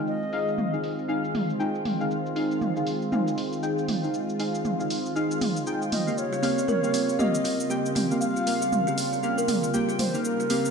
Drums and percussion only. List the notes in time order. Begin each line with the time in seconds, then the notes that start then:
0.07 shaker
0.23 shaker
0.33 open hi-hat, shaker
0.48 shaker
0.58 mid tom, shaker
0.74 shaker
0.84 open hi-hat, shaker
0.99 shaker
1.09 shaker
1.24 shaker
1.35 mid tom, open hi-hat, shaker
1.50 shaker
1.60 shaker
1.75 shaker
1.85 mid tom, open hi-hat, shaker
2.01 shaker
2.11 shaker
2.26 shaker
2.36 open hi-hat, shaker
2.51 shaker
2.61 mid tom, shaker
2.77 shaker
2.87 open hi-hat, shaker
3.02 shaker
3.12 mid tom, shaker
3.28 shaker
3.38 open hi-hat, shaker
3.53 shaker
3.63 shaker
3.78 shaker
3.88 mid tom, open hi-hat, shaker
4.04 shaker
4.14 shaker
4.29 shaker
4.40 open hi-hat, shaker
4.55 shaker
4.65 mid tom, shaker
4.80 shaker
4.90 open hi-hat, shaker
5.06 shaker
5.16 shaker
5.31 shaker
5.41 mid tom, open hi-hat, shaker
5.57 shaker
5.67 shaker
5.82 shaker
5.92 mid tom, open hi-hat, shaker
6.08 shaker
6.18 shaker
6.33 shaker
6.43 open hi-hat, shaker
6.58 shaker
6.68 mid tom, shaker
6.84 shaker
6.94 open hi-hat, shaker
7.09 shaker
7.19 mid tom, shaker
7.35 shaker
7.45 open hi-hat, shaker
7.60 shaker
7.70 shaker
7.86 shaker
7.96 mid tom, open hi-hat, shaker
8.11 shaker
8.21 shaker
8.37 shaker
8.47 open hi-hat, shaker
8.62 shaker
8.72 mid tom, shaker
8.88 shaker
8.98 open hi-hat, shaker
9.13 shaker
9.23 shaker
9.38 shaker
9.48 mid tom, open hi-hat, shaker
9.64 shaker
9.74 shaker
9.89 shaker
9.99 mid tom, open hi-hat, shaker
10.14 shaker
10.25 shaker
10.40 shaker
10.50 open hi-hat, shaker
10.65 shaker